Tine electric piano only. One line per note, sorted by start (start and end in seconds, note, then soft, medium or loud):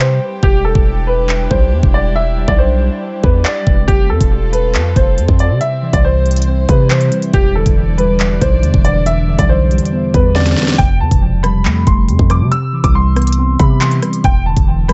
5.62 6.69 C3 medium
5.82 6.88 E3 medium
6.03 7.11 G3 medium
6.48 7.34 C4 medium
6.90 7.33 E3 medium
7.12 7.33 G3 medium
7.33 8.41 E2 medium
7.55 8.62 D3 medium
7.77 8.83 E3 medium
7.98 9.06 G3 loud
8.20 9.28 B2 medium
8.63 9.27 D3 medium
8.85 9.48 E3 medium
9.06 10.14 E2 medium
9.28 10.34 D3 medium
9.49 10.56 E3 medium
9.72 10.79 G3 loud
9.92 10.79 B3 medium
10.36 10.79 D3 medium
10.58 10.79 E3 medium
10.79 11.87 F2 medium
11.00 12.08 C3 medium
11.22 12.28 F3 medium
11.44 12.51 G3 loud
11.66 12.52 A3 medium
12.09 12.51 C3 loud
12.29 12.51 F3 medium
12.52 13.60 C3 medium
12.73 13.79 E3 medium
12.94 14.01 G3 medium
13.16 14.24 B3 loud
13.39 14.25 C4 medium
13.80 14.24 E3 medium
14.02 14.24 G3 medium
14.24 14.93 E2 medium
14.46 14.93 D3 medium
14.68 14.93 E3 medium
14.89 14.93 G3 loud